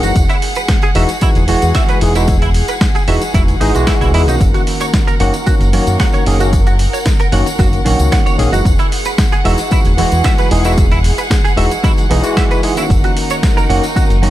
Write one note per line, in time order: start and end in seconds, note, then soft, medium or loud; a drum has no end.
0.00 0.12 F#1 medium
0.00 0.23 E3 medium
0.00 0.23 G#3 medium
0.00 0.24 D#4 medium
0.00 0.10 F#4 medium
0.00 0.24 F#4 medium
0.00 0.12 A#4 medium
0.00 4.37 F#5 medium
0.00 closed hi-hat soft
0.00 tambourine medium
0.16 0.25 E1 loud
0.16 4.36 G#4 medium
0.16 kick loud
0.16 closed hi-hat medium
0.16 tambourine medium
0.29 0.36 E4 medium
0.29 closed hi-hat soft
0.29 tambourine soft
0.42 open hi-hat loud
0.55 0.60 B4 medium
0.55 closed hi-hat soft
0.55 tambourine medium
0.68 kick loud
0.68 snare loud
0.68 closed hi-hat medium
0.68 tambourine medium
0.82 0.89 G#4 loud
0.82 closed hi-hat soft
0.82 tambourine soft
0.95 1.05 E1 medium
0.95 1.08 E3 medium
0.95 1.09 G#3 medium
0.95 1.09 D#4 medium
0.95 1.09 F#4 loud
0.95 1.03 E5 loud
0.95 open hi-hat medium
1.09 closed hi-hat soft
1.09 tambourine medium
1.21 1.42 E3 medium
1.21 1.43 G#3 medium
1.21 1.43 D#4 medium
1.21 1.29 E4 medium
1.21 1.43 F#4 medium
1.21 muted fingered electric bass stroke soft
1.21 kick loud
1.21 closed hi-hat medium
1.21 tambourine medium
1.35 1.53 E1 medium
1.35 closed hi-hat soft
1.35 tambourine soft
1.48 1.98 E3 medium
1.48 1.59 E3 loud
1.48 1.99 G#3 medium
1.48 1.99 F#4 loud
1.48 open hi-hat loud
1.62 1.71 E2 medium
1.62 closed hi-hat soft
1.62 tambourine medium
1.75 1.82 E5 medium
1.75 kick loud
1.75 snare loud
1.75 closed hi-hat medium
1.75 tambourine medium
1.88 1.99 B4 loud
1.88 closed hi-hat soft
1.88 tambourine soft
2.01 2.61 E1 loud
2.01 2.12 E3 medium
2.01 2.12 G#3 medium
2.01 2.13 D#4 medium
2.01 2.13 G#4 loud
2.01 open hi-hat medium
2.15 2.36 E3 medium
2.15 2.36 G#3 medium
2.15 2.36 D#4 medium
2.15 2.22 E4 medium
2.15 2.36 F#4 medium
2.15 closed hi-hat soft
2.15 tambourine medium
2.27 kick loud
2.27 closed hi-hat medium
2.27 tambourine medium
2.42 2.48 E4 medium
2.42 closed hi-hat soft
2.42 tambourine soft
2.54 open hi-hat loud
2.68 2.72 B4 medium
2.68 closed hi-hat soft
2.68 tambourine medium
2.81 kick loud
2.81 snare loud
2.81 closed hi-hat medium
2.81 tambourine medium
2.95 3.02 G#4 loud
2.95 closed hi-hat soft
2.95 tambourine soft
3.08 3.17 E1 medium
3.08 3.21 E3 medium
3.08 3.21 G#3 medium
3.08 3.21 D#4 medium
3.08 3.22 F#4 loud
3.08 3.15 E5 loud
3.08 open hi-hat medium
3.21 closed hi-hat soft
3.21 tambourine medium
3.34 3.52 E1 loud
3.34 3.55 E3 medium
3.34 3.55 G#3 medium
3.34 3.55 D#4 medium
3.34 3.41 E4 medium
3.34 3.55 F#4 medium
3.34 kick loud
3.34 snare soft
3.34 closed hi-hat medium
3.34 tambourine medium
3.34 swell medium
3.48 closed hi-hat soft
3.48 tambourine soft
3.61 3.70 G#1 medium
3.61 3.73 E3 medium
3.61 3.73 G#3 medium
3.61 3.71 D#4 medium
3.61 3.73 D#4 medium
3.61 3.73 G#4 loud
3.61 open hi-hat loud
3.75 3.83 B1 medium
3.75 4.11 E3 medium
3.75 4.11 G#3 medium
3.75 4.12 F#4 loud
3.75 closed hi-hat soft
3.75 tambourine medium
3.87 3.94 E4 medium
3.87 kick loud
3.87 snare loud
3.87 closed hi-hat medium
3.87 tambourine medium
4.01 4.14 B1 medium
4.01 4.08 E4 medium
4.01 closed hi-hat soft
4.01 tambourine soft
4.14 4.28 E2 medium
4.14 4.25 E3 medium
4.14 4.25 G#3 medium
4.14 4.25 D#4 medium
4.14 4.21 E4 loud
4.14 4.25 G#4 medium
4.14 open hi-hat medium
4.27 4.36 B1 medium
4.27 5.17 D#3 medium
4.27 5.17 A#3 medium
4.27 5.17 C#4 medium
4.27 4.34 D#4 loud
4.27 5.18 F#4 medium
4.27 closed hi-hat soft
4.27 tambourine medium
4.41 4.50 F#1 loud
4.41 8.61 A#4 medium
4.41 14.30 F#5 medium
4.41 kick loud
4.41 closed hi-hat medium
4.41 tambourine medium
4.54 4.61 F#4 medium
4.54 closed hi-hat soft
4.54 tambourine soft
4.67 open hi-hat loud
4.80 4.85 C#5 medium
4.80 closed hi-hat soft
4.80 tambourine medium
4.94 kick loud
4.94 snare loud
4.94 closed hi-hat medium
4.94 tambourine medium
5.07 5.14 A#4 loud
5.07 closed hi-hat soft
5.07 tambourine soft
5.20 5.30 F#1 medium
5.20 5.34 D#3 medium
5.20 5.34 A#3 medium
5.20 5.34 C#4 medium
5.20 5.34 F#4 loud
5.20 5.27 F#5 loud
5.20 open hi-hat loud
5.34 closed hi-hat soft
5.34 tambourine medium
5.46 5.67 D#3 medium
5.46 5.68 A#3 medium
5.46 5.68 C#4 medium
5.46 5.54 F#4 medium
5.46 5.68 F#4 medium
5.46 muted fingered electric bass stroke soft
5.46 kick loud
5.46 closed hi-hat medium
5.46 tambourine medium
5.61 5.78 F#1 medium
5.61 closed hi-hat soft
5.61 tambourine soft
5.73 6.23 D#3 medium
5.73 5.84 F#3 loud
5.73 6.23 A#3 medium
5.73 6.24 C#4 medium
5.73 6.24 F#4 loud
5.73 open hi-hat loud
5.87 5.96 F#2 medium
5.87 closed hi-hat soft
5.87 tambourine medium
5.99 6.07 F#5 medium
5.99 kick loud
5.99 snare loud
5.99 closed hi-hat medium
5.99 tambourine medium
6.12 6.23 C#5 loud
6.12 closed hi-hat soft
6.12 tambourine soft
6.26 6.86 F#1 loud
6.26 6.37 D#3 medium
6.26 6.37 A#3 medium
6.26 6.37 C#4 medium
6.26 6.37 G#4 loud
6.26 open hi-hat loud
6.40 6.60 D#3 medium
6.40 6.60 A#3 medium
6.40 6.61 C#4 medium
6.40 6.47 F#4 medium
6.40 6.61 F#4 medium
6.40 closed hi-hat soft
6.40 tambourine medium
6.53 kick loud
6.53 closed hi-hat medium
6.53 tambourine medium
6.67 6.73 F#4 medium
6.67 closed hi-hat soft
6.67 tambourine soft
6.79 open hi-hat loud
6.93 6.97 C#5 medium
6.93 closed hi-hat soft
6.93 tambourine medium
7.06 kick loud
7.06 snare loud
7.06 closed hi-hat medium
7.06 tambourine medium
7.20 7.26 A#4 loud
7.20 closed hi-hat soft
7.20 tambourine soft
7.32 7.42 F#1 medium
7.32 7.46 D#3 medium
7.32 7.46 A#3 medium
7.32 7.46 C#4 medium
7.32 7.46 F#4 loud
7.32 7.39 F#5 loud
7.32 open hi-hat medium
7.46 closed hi-hat soft
7.46 tambourine medium
7.58 7.77 F#1 loud
7.58 7.79 D#3 medium
7.58 7.80 A#3 medium
7.58 7.80 C#4 medium
7.58 7.66 F#4 medium
7.58 7.80 F#4 medium
7.58 kick loud
7.58 snare soft
7.58 closed hi-hat medium
7.58 tambourine medium
7.73 closed hi-hat soft
7.73 tambourine soft
7.85 7.95 A#1 medium
7.85 8.36 D#3 medium
7.85 7.96 F#3 medium
7.85 8.36 A#3 medium
7.85 8.36 C#4 medium
7.85 8.36 F#4 loud
7.85 open hi-hat loud
7.99 8.08 C#2 medium
7.99 closed hi-hat soft
7.99 tambourine medium
8.12 8.19 F#5 medium
8.12 kick loud
8.12 snare loud
8.12 closed hi-hat medium
8.12 tambourine medium
8.26 8.36 C#5 loud
8.26 closed hi-hat soft
8.26 tambourine soft
8.38 8.48 A#1 loud
8.38 8.49 D#3 medium
8.38 8.49 A#3 medium
8.38 8.49 C#4 medium
8.38 8.49 G#4 loud
8.38 open hi-hat medium
8.52 8.61 F#1 medium
8.52 8.72 E3 medium
8.52 8.73 G#3 medium
8.52 8.73 D#4 medium
8.52 8.59 F#4 medium
8.52 8.73 F#4 medium
8.52 closed hi-hat soft
8.52 tambourine medium
8.65 8.75 E1 loud
8.65 12.86 G#4 medium
8.65 kick loud
8.65 closed hi-hat medium
8.65 tambourine medium
8.79 8.86 E4 medium
8.79 closed hi-hat soft
8.79 tambourine soft
8.92 open hi-hat loud
9.05 9.10 B4 medium
9.05 closed hi-hat soft
9.05 tambourine medium
9.18 kick loud
9.18 snare loud
9.18 closed hi-hat medium
9.18 tambourine medium
9.32 9.39 G#4 loud
9.32 closed hi-hat soft
9.32 tambourine soft
9.44 9.54 E1 medium
9.44 9.58 E3 medium
9.44 9.58 G#3 medium
9.44 9.58 D#4 medium
9.44 9.59 F#4 loud
9.44 9.52 E5 loud
9.44 open hi-hat loud
9.58 closed hi-hat soft
9.58 tambourine medium
9.71 9.92 E3 medium
9.71 9.92 G#3 medium
9.71 9.92 D#4 medium
9.71 9.79 E4 medium
9.71 9.92 F#4 medium
9.71 muted fingered electric bass stroke soft
9.71 kick loud
9.71 closed hi-hat medium
9.71 tambourine medium
9.85 10.03 E1 medium
9.85 closed hi-hat soft
9.85 tambourine soft
9.98 10.48 E3 medium
9.98 10.09 E3 loud
9.98 10.48 G#3 medium
9.98 10.48 F#4 loud
9.98 open hi-hat loud
10.12 10.21 E2 medium
10.12 closed hi-hat soft
10.12 tambourine medium
10.24 10.32 E5 medium
10.24 kick loud
10.24 snare loud
10.24 closed hi-hat medium
10.24 tambourine medium
10.38 10.48 B4 loud
10.38 closed hi-hat soft
10.38 tambourine soft
10.51 11.11 E1 loud
10.51 10.62 E3 medium
10.51 10.62 G#3 medium
10.51 10.62 D#4 medium
10.51 10.62 G#4 loud
10.51 open hi-hat loud
10.65 10.85 E3 medium
10.65 10.85 G#3 medium
10.65 10.85 D#4 medium
10.65 10.71 E4 medium
10.65 10.86 F#4 medium
10.65 closed hi-hat soft
10.65 tambourine medium
10.77 kick loud
10.77 closed hi-hat medium
10.77 tambourine medium
10.92 10.98 E4 medium
10.92 closed hi-hat soft
10.92 tambourine soft
11.04 open hi-hat loud
11.18 11.22 B4 medium
11.18 closed hi-hat soft
11.18 tambourine medium
11.31 kick loud
11.31 snare loud
11.31 closed hi-hat medium
11.31 tambourine medium
11.44 11.51 G#4 medium
11.44 closed hi-hat soft
11.44 tambourine soft
11.57 11.67 E1 medium
11.57 11.70 E3 medium
11.57 11.70 G#3 medium
11.57 11.71 D#4 medium
11.57 11.71 F#4 loud
11.57 11.64 E5 loud
11.57 open hi-hat medium
11.71 closed hi-hat soft
11.71 tambourine medium
11.83 12.04 E3 medium
11.83 12.04 G#3 medium
11.83 12.05 D#4 medium
11.83 11.91 E4 medium
11.83 12.05 F#4 medium
11.83 kick loud
11.83 snare soft
11.83 closed hi-hat medium
11.83 tambourine medium
11.97 closed hi-hat soft
11.97 tambourine soft
12.10 12.20 B1 medium
12.10 12.22 E3 loud
12.10 12.21 E3 loud
12.10 12.22 G#3 medium
12.10 12.22 D#4 medium
12.10 12.22 G#4 loud
12.10 open hi-hat loud
12.23 12.60 E3 loud
12.23 12.60 G#3 medium
12.23 12.61 F#4 loud
12.23 closed hi-hat soft
12.23 tambourine medium
12.37 12.44 E5 medium
12.37 kick loud
12.37 snare loud
12.37 closed hi-hat medium
12.37 tambourine medium
12.51 12.60 B4 loud
12.51 closed hi-hat soft
12.51 tambourine soft
12.63 12.74 E3 medium
12.63 12.74 G#3 medium
12.63 12.74 D#4 medium
12.63 12.74 G#4 medium
12.63 open hi-hat loud
12.76 13.66 D#3 medium
12.76 13.66 A#3 medium
12.76 13.67 C#4 medium
12.76 12.84 E4 medium
12.76 13.67 F#4 medium
12.76 closed hi-hat soft
12.76 tambourine medium
12.90 12.99 F#1 loud
12.90 14.30 D#4 medium
12.90 14.30 A#4 medium
12.90 kick loud
12.90 closed hi-hat medium
12.90 tambourine medium
13.04 13.10 F#4 medium
13.04 closed hi-hat soft
13.04 tambourine soft
13.17 open hi-hat loud
13.30 13.34 C#5 medium
13.30 closed hi-hat soft
13.30 tambourine medium
13.43 kick loud
13.43 snare loud
13.43 closed hi-hat medium
13.43 tambourine medium
13.57 13.63 A#4 loud
13.57 closed hi-hat soft
13.57 tambourine soft
13.69 13.79 F#1 medium
13.69 13.83 D#3 medium
13.69 13.83 A#3 medium
13.69 13.83 C#4 medium
13.69 13.83 F#4 loud
13.69 13.77 F#5 loud
13.69 open hi-hat medium
13.83 closed hi-hat soft
13.83 tambourine medium
13.96 14.17 D#3 medium
13.96 14.17 A#3 medium
13.96 14.17 C#4 medium
13.96 14.03 F#4 medium
13.96 14.17 F#4 medium
13.96 muted fingered electric bass stroke soft
13.96 kick loud
13.96 closed hi-hat medium
13.96 tambourine medium
14.10 14.28 F#1 medium
14.10 closed hi-hat soft
14.10 tambourine soft
14.22 14.30 D#3 medium
14.22 14.30 F#3 loud
14.22 14.30 A#3 medium
14.22 14.30 C#4 medium
14.22 14.30 F#4 loud
14.22 open hi-hat loud